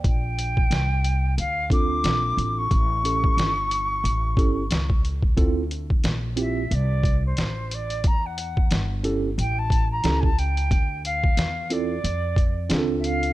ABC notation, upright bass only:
X:1
M:4/4
L:1/8
Q:"Swing 16ths" 1/4=90
K:Dm
V:1 name="Upright bass" clef=bass
B,,,2 C,,2 D,,2 B,,, A,,, | A,,,2 G,,,2 A,,, G,,, ^C,,2 | D,,2 B,,,2 C,,2 A,,,2 | E,,2 G,,,2 A,,,2 ^C,,2 |
D,,2 E,,2 F,,2 ^C,,2 |]